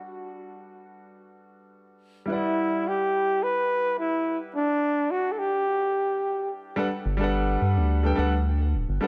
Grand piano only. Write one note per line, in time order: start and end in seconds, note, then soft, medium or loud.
0.00 2.24 G3 medium
0.00 2.25 D4 medium
0.00 2.26 A4 medium
0.00 2.27 B4 medium
0.00 2.27 F#5 medium
2.26 6.73 G3 medium
2.26 6.74 E4 medium
2.26 6.75 B4 medium
2.31 6.76 D5 medium
2.31 6.76 F#5 medium
6.76 6.86 G3 medium
6.76 6.86 D4 medium
6.76 6.87 A4 medium
6.76 6.87 B4 medium
6.76 6.87 F#5 loud
7.17 7.99 G3 medium
7.17 8.00 D4 medium
7.17 8.01 A4 medium
7.22 8.02 B4 medium
7.22 8.03 F#5 loud
8.03 8.14 G3 medium
8.03 8.14 D4 medium
8.03 8.15 A4 medium
8.03 8.15 B4 medium
8.03 8.15 G5 medium
8.16 8.31 G3 medium
8.16 8.31 D4 medium
8.16 8.31 A4 medium
8.16 8.32 B4 medium
8.16 8.32 F#5 medium
9.01 9.07 G3 medium
9.01 9.07 D4 medium
9.01 9.07 A4 medium
9.01 9.07 B4 medium
9.01 9.07 F#5 medium